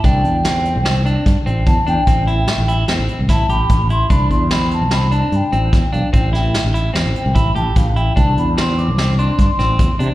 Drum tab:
HH |xxxxxxxxxx|xxxxxxxxxx|xxxxxxxxxx|xxxxxxxxxx|
SD |--o-o-o---|--o-o-o---|--o-o---o-|-oo-o-----|
BD |o-----o-o-|o-----o-o-|oo------o-|o-----o-o-|

HH |xxxxxxxxxx|
SD |--o-o--o--|
BD |o-----o-o-|